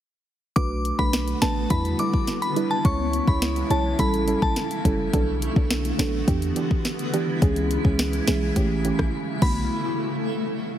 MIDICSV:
0, 0, Header, 1, 6, 480
1, 0, Start_track
1, 0, Key_signature, 2, "minor"
1, 0, Tempo, 571429
1, 472, Time_signature, 4, 2, 24, 8
1, 9058, End_track
2, 0, Start_track
2, 0, Title_t, "Synth bell"
2, 0, Program_c, 0, 98
2, 469, Note_on_c, 0, 86, 100
2, 654, Note_off_c, 0, 86, 0
2, 829, Note_on_c, 0, 83, 85
2, 922, Note_off_c, 0, 83, 0
2, 1190, Note_on_c, 0, 81, 84
2, 1283, Note_off_c, 0, 81, 0
2, 1432, Note_on_c, 0, 83, 84
2, 1524, Note_off_c, 0, 83, 0
2, 1675, Note_on_c, 0, 86, 74
2, 1766, Note_off_c, 0, 86, 0
2, 2033, Note_on_c, 0, 83, 78
2, 2125, Note_off_c, 0, 83, 0
2, 2273, Note_on_c, 0, 81, 86
2, 2365, Note_off_c, 0, 81, 0
2, 2396, Note_on_c, 0, 85, 90
2, 2579, Note_off_c, 0, 85, 0
2, 2755, Note_on_c, 0, 83, 80
2, 2846, Note_off_c, 0, 83, 0
2, 3114, Note_on_c, 0, 81, 79
2, 3205, Note_off_c, 0, 81, 0
2, 3356, Note_on_c, 0, 83, 92
2, 3447, Note_off_c, 0, 83, 0
2, 3714, Note_on_c, 0, 81, 76
2, 3805, Note_off_c, 0, 81, 0
2, 7914, Note_on_c, 0, 83, 81
2, 8136, Note_off_c, 0, 83, 0
2, 9058, End_track
3, 0, Start_track
3, 0, Title_t, "Synth pluck"
3, 0, Program_c, 1, 84
3, 471, Note_on_c, 1, 57, 97
3, 473, Note_on_c, 1, 62, 90
3, 475, Note_on_c, 1, 66, 88
3, 476, Note_on_c, 1, 71, 108
3, 628, Note_off_c, 1, 57, 0
3, 629, Note_off_c, 1, 62, 0
3, 630, Note_off_c, 1, 66, 0
3, 630, Note_off_c, 1, 71, 0
3, 830, Note_on_c, 1, 57, 78
3, 832, Note_on_c, 1, 62, 69
3, 833, Note_on_c, 1, 66, 69
3, 836, Note_on_c, 1, 71, 83
3, 1162, Note_off_c, 1, 57, 0
3, 1163, Note_off_c, 1, 62, 0
3, 1164, Note_off_c, 1, 66, 0
3, 1165, Note_off_c, 1, 71, 0
3, 1190, Note_on_c, 1, 57, 80
3, 1192, Note_on_c, 1, 62, 78
3, 1193, Note_on_c, 1, 66, 73
3, 1196, Note_on_c, 1, 71, 90
3, 1412, Note_off_c, 1, 57, 0
3, 1413, Note_off_c, 1, 62, 0
3, 1413, Note_off_c, 1, 66, 0
3, 1415, Note_off_c, 1, 71, 0
3, 1431, Note_on_c, 1, 55, 98
3, 1434, Note_on_c, 1, 62, 88
3, 1435, Note_on_c, 1, 64, 90
3, 1437, Note_on_c, 1, 71, 108
3, 1652, Note_off_c, 1, 55, 0
3, 1654, Note_off_c, 1, 62, 0
3, 1655, Note_off_c, 1, 64, 0
3, 1656, Note_off_c, 1, 71, 0
3, 1673, Note_on_c, 1, 55, 83
3, 1676, Note_on_c, 1, 62, 72
3, 1676, Note_on_c, 1, 64, 70
3, 1678, Note_on_c, 1, 71, 88
3, 1829, Note_off_c, 1, 55, 0
3, 1830, Note_off_c, 1, 62, 0
3, 1830, Note_off_c, 1, 64, 0
3, 1831, Note_off_c, 1, 71, 0
3, 2153, Note_on_c, 1, 55, 85
3, 2154, Note_on_c, 1, 62, 78
3, 2155, Note_on_c, 1, 64, 78
3, 2158, Note_on_c, 1, 71, 94
3, 2309, Note_off_c, 1, 55, 0
3, 2309, Note_off_c, 1, 62, 0
3, 2310, Note_off_c, 1, 64, 0
3, 2311, Note_off_c, 1, 71, 0
3, 2390, Note_on_c, 1, 56, 100
3, 2393, Note_on_c, 1, 61, 91
3, 2395, Note_on_c, 1, 64, 86
3, 2396, Note_on_c, 1, 73, 107
3, 2547, Note_off_c, 1, 56, 0
3, 2549, Note_off_c, 1, 61, 0
3, 2550, Note_off_c, 1, 64, 0
3, 2550, Note_off_c, 1, 73, 0
3, 2751, Note_on_c, 1, 56, 78
3, 2753, Note_on_c, 1, 61, 72
3, 2755, Note_on_c, 1, 64, 72
3, 2757, Note_on_c, 1, 73, 83
3, 3083, Note_off_c, 1, 56, 0
3, 3084, Note_off_c, 1, 61, 0
3, 3085, Note_off_c, 1, 64, 0
3, 3086, Note_off_c, 1, 73, 0
3, 3113, Note_on_c, 1, 56, 86
3, 3115, Note_on_c, 1, 61, 76
3, 3116, Note_on_c, 1, 64, 75
3, 3117, Note_on_c, 1, 73, 89
3, 3333, Note_off_c, 1, 56, 0
3, 3334, Note_off_c, 1, 61, 0
3, 3335, Note_off_c, 1, 64, 0
3, 3336, Note_off_c, 1, 73, 0
3, 3349, Note_on_c, 1, 55, 96
3, 3352, Note_on_c, 1, 61, 88
3, 3352, Note_on_c, 1, 64, 85
3, 3355, Note_on_c, 1, 69, 103
3, 3571, Note_off_c, 1, 55, 0
3, 3573, Note_off_c, 1, 61, 0
3, 3573, Note_off_c, 1, 64, 0
3, 3574, Note_off_c, 1, 69, 0
3, 3591, Note_on_c, 1, 55, 78
3, 3593, Note_on_c, 1, 61, 73
3, 3594, Note_on_c, 1, 64, 70
3, 3597, Note_on_c, 1, 69, 86
3, 3748, Note_off_c, 1, 55, 0
3, 3749, Note_off_c, 1, 61, 0
3, 3749, Note_off_c, 1, 64, 0
3, 3751, Note_off_c, 1, 69, 0
3, 4073, Note_on_c, 1, 55, 84
3, 4074, Note_on_c, 1, 61, 76
3, 4076, Note_on_c, 1, 64, 77
3, 4078, Note_on_c, 1, 69, 91
3, 4229, Note_off_c, 1, 55, 0
3, 4229, Note_off_c, 1, 61, 0
3, 4230, Note_off_c, 1, 64, 0
3, 4231, Note_off_c, 1, 69, 0
3, 4314, Note_on_c, 1, 54, 98
3, 4315, Note_on_c, 1, 59, 88
3, 4317, Note_on_c, 1, 62, 93
3, 4318, Note_on_c, 1, 69, 107
3, 4469, Note_off_c, 1, 54, 0
3, 4470, Note_off_c, 1, 59, 0
3, 4471, Note_off_c, 1, 62, 0
3, 4471, Note_off_c, 1, 69, 0
3, 4672, Note_on_c, 1, 54, 77
3, 4674, Note_on_c, 1, 59, 70
3, 4676, Note_on_c, 1, 62, 68
3, 4678, Note_on_c, 1, 69, 81
3, 5004, Note_off_c, 1, 54, 0
3, 5004, Note_off_c, 1, 59, 0
3, 5005, Note_off_c, 1, 62, 0
3, 5006, Note_off_c, 1, 69, 0
3, 5031, Note_on_c, 1, 54, 83
3, 5033, Note_on_c, 1, 59, 77
3, 5035, Note_on_c, 1, 62, 74
3, 5037, Note_on_c, 1, 69, 91
3, 5253, Note_off_c, 1, 54, 0
3, 5254, Note_off_c, 1, 59, 0
3, 5254, Note_off_c, 1, 62, 0
3, 5255, Note_off_c, 1, 69, 0
3, 5271, Note_on_c, 1, 52, 90
3, 5273, Note_on_c, 1, 59, 90
3, 5274, Note_on_c, 1, 62, 87
3, 5276, Note_on_c, 1, 67, 109
3, 5492, Note_off_c, 1, 52, 0
3, 5493, Note_off_c, 1, 59, 0
3, 5494, Note_off_c, 1, 62, 0
3, 5495, Note_off_c, 1, 67, 0
3, 5511, Note_on_c, 1, 52, 80
3, 5512, Note_on_c, 1, 59, 73
3, 5514, Note_on_c, 1, 62, 73
3, 5516, Note_on_c, 1, 67, 83
3, 5668, Note_off_c, 1, 52, 0
3, 5668, Note_off_c, 1, 59, 0
3, 5669, Note_off_c, 1, 62, 0
3, 5670, Note_off_c, 1, 67, 0
3, 5990, Note_on_c, 1, 52, 79
3, 5993, Note_on_c, 1, 59, 72
3, 5993, Note_on_c, 1, 62, 77
3, 5994, Note_on_c, 1, 67, 93
3, 6148, Note_off_c, 1, 52, 0
3, 6149, Note_off_c, 1, 59, 0
3, 6149, Note_off_c, 1, 62, 0
3, 6149, Note_off_c, 1, 67, 0
3, 6231, Note_on_c, 1, 52, 100
3, 6232, Note_on_c, 1, 56, 88
3, 6234, Note_on_c, 1, 61, 85
3, 6236, Note_on_c, 1, 68, 104
3, 6388, Note_off_c, 1, 52, 0
3, 6388, Note_off_c, 1, 56, 0
3, 6389, Note_off_c, 1, 61, 0
3, 6390, Note_off_c, 1, 68, 0
3, 6592, Note_on_c, 1, 52, 78
3, 6593, Note_on_c, 1, 56, 68
3, 6595, Note_on_c, 1, 61, 69
3, 6598, Note_on_c, 1, 68, 82
3, 6923, Note_off_c, 1, 52, 0
3, 6924, Note_off_c, 1, 56, 0
3, 6925, Note_off_c, 1, 61, 0
3, 6926, Note_off_c, 1, 68, 0
3, 6950, Note_on_c, 1, 52, 82
3, 6951, Note_on_c, 1, 56, 75
3, 6953, Note_on_c, 1, 61, 78
3, 6954, Note_on_c, 1, 68, 92
3, 7172, Note_off_c, 1, 52, 0
3, 7172, Note_off_c, 1, 56, 0
3, 7173, Note_off_c, 1, 61, 0
3, 7174, Note_off_c, 1, 68, 0
3, 7192, Note_on_c, 1, 52, 96
3, 7194, Note_on_c, 1, 57, 86
3, 7194, Note_on_c, 1, 61, 87
3, 7197, Note_on_c, 1, 67, 101
3, 7413, Note_off_c, 1, 52, 0
3, 7414, Note_off_c, 1, 57, 0
3, 7414, Note_off_c, 1, 61, 0
3, 7416, Note_off_c, 1, 67, 0
3, 7433, Note_on_c, 1, 52, 80
3, 7434, Note_on_c, 1, 57, 71
3, 7435, Note_on_c, 1, 61, 73
3, 7438, Note_on_c, 1, 67, 83
3, 7589, Note_off_c, 1, 52, 0
3, 7589, Note_off_c, 1, 57, 0
3, 7590, Note_off_c, 1, 61, 0
3, 7591, Note_off_c, 1, 67, 0
3, 7910, Note_on_c, 1, 50, 92
3, 7914, Note_on_c, 1, 57, 86
3, 7916, Note_on_c, 1, 59, 84
3, 7918, Note_on_c, 1, 66, 99
3, 8090, Note_off_c, 1, 50, 0
3, 8092, Note_off_c, 1, 57, 0
3, 8093, Note_off_c, 1, 59, 0
3, 8094, Note_off_c, 1, 66, 0
3, 9058, End_track
4, 0, Start_track
4, 0, Title_t, "Ambient pad"
4, 0, Program_c, 2, 92
4, 471, Note_on_c, 2, 50, 81
4, 1433, Note_on_c, 2, 64, 91
4, 2372, Note_off_c, 2, 50, 0
4, 2398, Note_on_c, 2, 49, 80
4, 3333, Note_off_c, 2, 64, 0
4, 3354, Note_on_c, 2, 57, 74
4, 4296, Note_off_c, 2, 49, 0
4, 4314, Note_on_c, 2, 50, 83
4, 4314, Note_on_c, 2, 59, 78
4, 5254, Note_off_c, 2, 57, 0
4, 5271, Note_on_c, 2, 64, 93
4, 6214, Note_off_c, 2, 50, 0
4, 6214, Note_off_c, 2, 59, 0
4, 6238, Note_on_c, 2, 49, 83
4, 7885, Note_off_c, 2, 64, 0
4, 7898, Note_off_c, 2, 49, 0
4, 9058, End_track
5, 0, Start_track
5, 0, Title_t, "808-style bass"
5, 0, Program_c, 3, 38
5, 473, Note_on_c, 3, 35, 112
5, 769, Note_off_c, 3, 35, 0
5, 832, Note_on_c, 3, 35, 105
5, 1129, Note_off_c, 3, 35, 0
5, 1194, Note_on_c, 3, 33, 95
5, 1391, Note_off_c, 3, 33, 0
5, 1431, Note_on_c, 3, 40, 104
5, 1630, Note_off_c, 3, 40, 0
5, 2393, Note_on_c, 3, 37, 113
5, 2689, Note_off_c, 3, 37, 0
5, 2750, Note_on_c, 3, 37, 92
5, 3048, Note_off_c, 3, 37, 0
5, 3109, Note_on_c, 3, 35, 98
5, 3308, Note_off_c, 3, 35, 0
5, 3352, Note_on_c, 3, 33, 97
5, 3649, Note_off_c, 3, 33, 0
5, 3714, Note_on_c, 3, 33, 92
5, 3812, Note_off_c, 3, 33, 0
5, 4074, Note_on_c, 3, 30, 96
5, 4271, Note_off_c, 3, 30, 0
5, 4314, Note_on_c, 3, 35, 110
5, 4610, Note_off_c, 3, 35, 0
5, 4672, Note_on_c, 3, 35, 103
5, 4969, Note_off_c, 3, 35, 0
5, 5030, Note_on_c, 3, 33, 96
5, 5229, Note_off_c, 3, 33, 0
5, 5273, Note_on_c, 3, 40, 104
5, 5470, Note_off_c, 3, 40, 0
5, 6234, Note_on_c, 3, 37, 116
5, 6530, Note_off_c, 3, 37, 0
5, 6592, Note_on_c, 3, 37, 97
5, 6889, Note_off_c, 3, 37, 0
5, 6952, Note_on_c, 3, 35, 95
5, 7150, Note_off_c, 3, 35, 0
5, 7193, Note_on_c, 3, 33, 101
5, 7489, Note_off_c, 3, 33, 0
5, 7554, Note_on_c, 3, 33, 90
5, 7652, Note_off_c, 3, 33, 0
5, 7913, Note_on_c, 3, 35, 104
5, 8136, Note_off_c, 3, 35, 0
5, 9058, End_track
6, 0, Start_track
6, 0, Title_t, "Drums"
6, 473, Note_on_c, 9, 36, 118
6, 473, Note_on_c, 9, 42, 73
6, 557, Note_off_c, 9, 36, 0
6, 557, Note_off_c, 9, 42, 0
6, 714, Note_on_c, 9, 42, 77
6, 798, Note_off_c, 9, 42, 0
6, 831, Note_on_c, 9, 36, 96
6, 915, Note_off_c, 9, 36, 0
6, 952, Note_on_c, 9, 38, 125
6, 952, Note_on_c, 9, 42, 78
6, 1036, Note_off_c, 9, 38, 0
6, 1036, Note_off_c, 9, 42, 0
6, 1071, Note_on_c, 9, 42, 60
6, 1155, Note_off_c, 9, 42, 0
6, 1190, Note_on_c, 9, 42, 77
6, 1191, Note_on_c, 9, 38, 110
6, 1274, Note_off_c, 9, 42, 0
6, 1275, Note_off_c, 9, 38, 0
6, 1430, Note_on_c, 9, 42, 81
6, 1431, Note_on_c, 9, 36, 96
6, 1514, Note_off_c, 9, 42, 0
6, 1515, Note_off_c, 9, 36, 0
6, 1555, Note_on_c, 9, 42, 50
6, 1639, Note_off_c, 9, 42, 0
6, 1671, Note_on_c, 9, 42, 74
6, 1755, Note_off_c, 9, 42, 0
6, 1794, Note_on_c, 9, 36, 94
6, 1878, Note_off_c, 9, 36, 0
6, 1910, Note_on_c, 9, 42, 84
6, 1912, Note_on_c, 9, 38, 65
6, 1994, Note_off_c, 9, 42, 0
6, 1996, Note_off_c, 9, 38, 0
6, 2034, Note_on_c, 9, 42, 52
6, 2118, Note_off_c, 9, 42, 0
6, 2154, Note_on_c, 9, 42, 75
6, 2238, Note_off_c, 9, 42, 0
6, 2393, Note_on_c, 9, 36, 125
6, 2393, Note_on_c, 9, 42, 74
6, 2477, Note_off_c, 9, 36, 0
6, 2477, Note_off_c, 9, 42, 0
6, 2633, Note_on_c, 9, 42, 78
6, 2717, Note_off_c, 9, 42, 0
6, 2751, Note_on_c, 9, 36, 95
6, 2835, Note_off_c, 9, 36, 0
6, 2873, Note_on_c, 9, 38, 122
6, 2873, Note_on_c, 9, 42, 83
6, 2957, Note_off_c, 9, 38, 0
6, 2957, Note_off_c, 9, 42, 0
6, 2992, Note_on_c, 9, 42, 59
6, 3076, Note_off_c, 9, 42, 0
6, 3112, Note_on_c, 9, 42, 73
6, 3196, Note_off_c, 9, 42, 0
6, 3351, Note_on_c, 9, 42, 82
6, 3352, Note_on_c, 9, 36, 100
6, 3435, Note_off_c, 9, 42, 0
6, 3436, Note_off_c, 9, 36, 0
6, 3475, Note_on_c, 9, 42, 51
6, 3559, Note_off_c, 9, 42, 0
6, 3592, Note_on_c, 9, 42, 76
6, 3676, Note_off_c, 9, 42, 0
6, 3714, Note_on_c, 9, 36, 90
6, 3798, Note_off_c, 9, 36, 0
6, 3833, Note_on_c, 9, 42, 83
6, 3834, Note_on_c, 9, 38, 67
6, 3917, Note_off_c, 9, 42, 0
6, 3918, Note_off_c, 9, 38, 0
6, 3955, Note_on_c, 9, 42, 54
6, 4039, Note_off_c, 9, 42, 0
6, 4074, Note_on_c, 9, 36, 95
6, 4075, Note_on_c, 9, 42, 76
6, 4158, Note_off_c, 9, 36, 0
6, 4159, Note_off_c, 9, 42, 0
6, 4313, Note_on_c, 9, 36, 125
6, 4313, Note_on_c, 9, 42, 72
6, 4397, Note_off_c, 9, 36, 0
6, 4397, Note_off_c, 9, 42, 0
6, 4554, Note_on_c, 9, 42, 79
6, 4638, Note_off_c, 9, 42, 0
6, 4672, Note_on_c, 9, 36, 94
6, 4756, Note_off_c, 9, 36, 0
6, 4792, Note_on_c, 9, 38, 120
6, 4792, Note_on_c, 9, 42, 79
6, 4876, Note_off_c, 9, 38, 0
6, 4876, Note_off_c, 9, 42, 0
6, 4914, Note_on_c, 9, 42, 60
6, 4998, Note_off_c, 9, 42, 0
6, 5033, Note_on_c, 9, 42, 74
6, 5034, Note_on_c, 9, 38, 112
6, 5117, Note_off_c, 9, 42, 0
6, 5118, Note_off_c, 9, 38, 0
6, 5273, Note_on_c, 9, 36, 101
6, 5273, Note_on_c, 9, 42, 82
6, 5357, Note_off_c, 9, 36, 0
6, 5357, Note_off_c, 9, 42, 0
6, 5394, Note_on_c, 9, 42, 52
6, 5478, Note_off_c, 9, 42, 0
6, 5511, Note_on_c, 9, 42, 78
6, 5595, Note_off_c, 9, 42, 0
6, 5635, Note_on_c, 9, 36, 94
6, 5719, Note_off_c, 9, 36, 0
6, 5753, Note_on_c, 9, 42, 85
6, 5754, Note_on_c, 9, 38, 71
6, 5837, Note_off_c, 9, 42, 0
6, 5838, Note_off_c, 9, 38, 0
6, 5873, Note_on_c, 9, 42, 54
6, 5957, Note_off_c, 9, 42, 0
6, 5994, Note_on_c, 9, 42, 80
6, 6078, Note_off_c, 9, 42, 0
6, 6233, Note_on_c, 9, 36, 124
6, 6233, Note_on_c, 9, 42, 76
6, 6317, Note_off_c, 9, 36, 0
6, 6317, Note_off_c, 9, 42, 0
6, 6353, Note_on_c, 9, 42, 56
6, 6437, Note_off_c, 9, 42, 0
6, 6474, Note_on_c, 9, 42, 74
6, 6558, Note_off_c, 9, 42, 0
6, 6591, Note_on_c, 9, 36, 97
6, 6675, Note_off_c, 9, 36, 0
6, 6712, Note_on_c, 9, 38, 123
6, 6712, Note_on_c, 9, 42, 82
6, 6796, Note_off_c, 9, 38, 0
6, 6796, Note_off_c, 9, 42, 0
6, 6831, Note_on_c, 9, 42, 62
6, 6915, Note_off_c, 9, 42, 0
6, 6950, Note_on_c, 9, 42, 76
6, 6951, Note_on_c, 9, 38, 109
6, 7034, Note_off_c, 9, 42, 0
6, 7035, Note_off_c, 9, 38, 0
6, 7191, Note_on_c, 9, 42, 82
6, 7192, Note_on_c, 9, 36, 100
6, 7275, Note_off_c, 9, 42, 0
6, 7276, Note_off_c, 9, 36, 0
6, 7431, Note_on_c, 9, 42, 76
6, 7515, Note_off_c, 9, 42, 0
6, 7551, Note_on_c, 9, 37, 100
6, 7554, Note_on_c, 9, 36, 93
6, 7635, Note_off_c, 9, 37, 0
6, 7638, Note_off_c, 9, 36, 0
6, 7912, Note_on_c, 9, 49, 89
6, 7913, Note_on_c, 9, 36, 114
6, 7996, Note_off_c, 9, 49, 0
6, 7997, Note_off_c, 9, 36, 0
6, 9058, End_track
0, 0, End_of_file